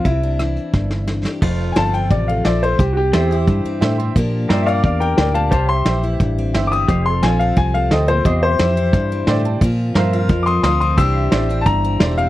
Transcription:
0.04 fingered electric bass C2, steel-string acoustic guitar C3 C4, upright piano E4, kick, closed hi-hat
0.23 steel-string acoustic guitar D4
0.39 steel-string acoustic guitar E3 D4, cross-stick, closed hi-hat
0.56 closed hi-hat
0.73 fingered electric bass G1, steel-string acoustic guitar G2, kick, snare
0.91 snare
1.07 steel-string acoustic guitar E3, snare
1.25 steel-string acoustic guitar G4, snare
1.42 fingered electric bass F1, steel-string acoustic guitar F2, pedal steel guitar F4 A4 C5, kick, crash
1.72 steel-string acoustic guitar F3, grand piano A4, upright piano G#5, snare, closed hi-hat
1.77 fingered electric bass G1, grand piano C5 F5, upright piano A5
1.93 steel-string acoustic guitar C4, upright piano G5, closed hi-hat
2.10 fingered electric bass A1, steel-string acoustic guitar C3, upright piano D5, kick, closed hi-hat
2.28 steel-string acoustic guitar A3, upright piano F5
2.44 fingered electric bass A#1, steel-string acoustic guitar F3 C4, grand piano A4 C5 E5, upright piano D5, snare, closed hi-hat
2.63 steel-string acoustic guitar A3, upright piano C5
2.79 fingered electric bass C2, steel-string acoustic guitar C3, upright piano G4, kick, closed hi-hat
2.93 upright piano F#4
2.97 upright piano G4
3.13 fingered electric bass E2, steel-string acoustic guitar E3, grand piano G4 C5 E5, pedal steel guitar A4 C5 E5, snare, closed hi-hat
3.30 steel-string acoustic guitar E4, closed hi-hat
3.38 pedal steel guitar G4
3.48 fingered electric bass G2, steel-string acoustic guitar G2, kick, closed hi-hat
3.65 steel-string acoustic guitar C4, muted fingered electric bass stroke
3.80 fingered electric bass A2, steel-string acoustic guitar D3, grand piano G4 C5 E5, snare, closed hi-hat
3.98 steel-string acoustic guitar C3, grand piano C6
4.16 fingered electric bass A#2, steel-string acoustic guitar A#2 F3 A#3 D4 G4, kick, closed hi-hat
4.48 fingered electric bass G2, grand piano G4 A#4 D5, pedal steel guitar A#4 C5 E5, snare, closed hi-hat
4.62 upright piano D5 E5
4.67 steel-string acoustic guitar D4, upright piano F5, closed hi-hat
4.71 pedal steel guitar D5 F5
4.83 fingered electric bass E2, upright piano D5 F5, kick, closed hi-hat
5.00 steel-string acoustic guitar A#3, upright piano A#4 G5
5.17 fingered electric bass D2, steel-string acoustic guitar A2, grand piano G4 A#4 D5, upright piano A#4 G5, snare, closed hi-hat
5.34 steel-string acoustic guitar A#2, upright piano F5 A5
5.51 fingered electric bass C2, steel-string acoustic guitar C3, pedal steel guitar G4 D5 F5, upright piano C5 A5, kick, closed hi-hat
5.69 upright piano C6
5.73 pedal steel guitar C5 E5
5.85 fingered electric bass A#1, steel-string acoustic guitar E3, grand piano G4 C5 E5, snare, closed hi-hat
6.03 steel-string acoustic guitar E4, closed hi-hat
6.20 fingered electric bass A1, steel-string acoustic guitar G2, kick, closed hi-hat
6.39 steel-string acoustic guitar C4
6.53 fingered electric bass G1, steel-string acoustic guitar E3 E4, grand piano G4 C5 E5, snare, closed hi-hat
6.67 upright piano D6
6.72 steel-string acoustic guitar C4, upright piano D#6
6.88 fingered electric bass F1, steel-string acoustic guitar F2, pedal steel guitar G4 C5 F5, kick, closed hi-hat
7.06 upright piano C6
7.13 pedal steel guitar A4
7.22 fingered electric bass A#1, steel-string acoustic guitar F3, grand piano A4 C5 F5, upright piano G#5, snare, closed hi-hat
7.39 steel-string acoustic guitar C4, upright piano F5, closed hi-hat
7.57 fingered electric bass C2, steel-string acoustic guitar C3, upright piano G#5, kick, closed hi-hat
7.74 steel-string acoustic guitar A3, upright piano F5
7.90 fingered electric bass D2, steel-string acoustic guitar A2, grand piano A4 C5 G5, upright piano D#5, snare, closed hi-hat
8.08 steel-string acoustic guitar A#2, upright piano C5
8.25 fingered electric bass E2, steel-string acoustic guitar C3, pedal steel guitar G4 C5 F5, upright piano D#5, kick, closed hi-hat
8.43 upright piano C5
8.47 pedal steel guitar E5
8.58 fingered electric bass F2, steel-string acoustic guitar E3, grand piano G4 C5 E5, snare, closed hi-hat
8.76 steel-string acoustic guitar E4, closed hi-hat
8.93 fingered electric bass G2, steel-string acoustic guitar G2, kick, closed hi-hat
9.12 steel-string acoustic guitar C4
9.27 fingered electric bass A2, steel-string acoustic guitar D3, grand piano G4 C5 D5 E5, snare, closed hi-hat
9.45 steel-string acoustic guitar C3, grand piano A5
9.61 fingered electric bass A#2, steel-string acoustic guitar A#2 F3 C4 F4, kick, closed hi-hat
9.95 fingered electric bass G2, steel-string acoustic guitar F3, grand piano A#4 C5 F5, pedal steel guitar A#4 C5 E5, snare, closed hi-hat
10.13 steel-string acoustic guitar F4, closed hi-hat
10.17 pedal steel guitar F5
10.29 steel-string acoustic guitar F2, fingered electric bass F2, kick, closed hi-hat
10.43 upright piano C6 D6
10.47 steel-string acoustic guitar C4, upright piano D#6
10.63 fingered electric bass D2, steel-string acoustic guitar F3 F4, grand piano A#4 C5 F5, upright piano C6 D#6, snare, closed hi-hat
10.80 steel-string acoustic guitar C4, upright piano C6 D#6
10.97 fingered electric bass C2, steel-string acoustic guitar C3 E3 C4 D4 G4, pedal steel guitar G4 C5 F5, upright piano E6, kick, closed hi-hat
11.20 pedal steel guitar E5
11.31 fingered electric bass A1, steel-string acoustic guitar E3, grand piano C5 D5 E5, snare, closed hi-hat
11.49 steel-string acoustic guitar D4, closed hi-hat
11.61 upright piano A5
11.66 fingered electric bass G1, steel-string acoustic guitar G2, upright piano A#5, kick, closed hi-hat
11.85 steel-string acoustic guitar C4
11.99 fingered electric bass E1, steel-string acoustic guitar E3 D4, grand piano C5 D5 E5, snare, closed hi-hat
12.18 steel-string acoustic guitar C4, upright piano F5

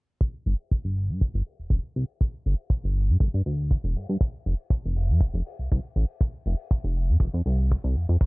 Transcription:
0.21 kick
0.46 analog synth bass G1, open hi-hat
0.71 kick
0.84 analog synth bass G1
0.96 open hi-hat
1.09 analog synth bass G2
1.21 analog synth bass G1, kick
1.34 analog synth bass G1
1.46 open hi-hat
1.59 analog synth bass E1
1.70 analog synth bass E1, kick
1.96 analog synth bass C2, open hi-hat
2.21 kick
2.45 analog synth bass G1, open hi-hat
2.70 kick
2.84 analog synth bass G1
2.96 open hi-hat
3.09 analog synth bass G2
3.20 analog synth bass G1, kick
3.34 analog synth bass G2
3.46 analog synth bass D2, open hi-hat
3.71 kick
3.84 analog synth bass E1
3.96 analog synth bass G2, open hi-hat
4.09 analog synth bass G2
4.21 kick
4.46 analog synth bass F1, open hi-hat
4.70 kick
4.84 analog synth bass F1
4.96 open hi-hat
5.09 analog synth bass F2
5.21 analog synth bass F1, kick
5.34 analog synth bass F1
5.46 open hi-hat
5.59 analog synth bass C2
5.72 analog synth bass C2, kick
5.96 analog synth bass A1, open hi-hat
6.21 kick
6.46 analog synth bass F1, open hi-hat
6.71 kick
6.84 analog synth bass F1
6.96 open hi-hat
7.09 analog synth bass F2
7.20 analog synth bass F1, kick
7.34 analog synth bass F2
7.46 analog synth bass C2, open hi-hat
7.72 kick
7.84 analog synth bass C2
7.96 analog synth bass F2, open hi-hat
8.09 analog synth bass F2
8.21 kick

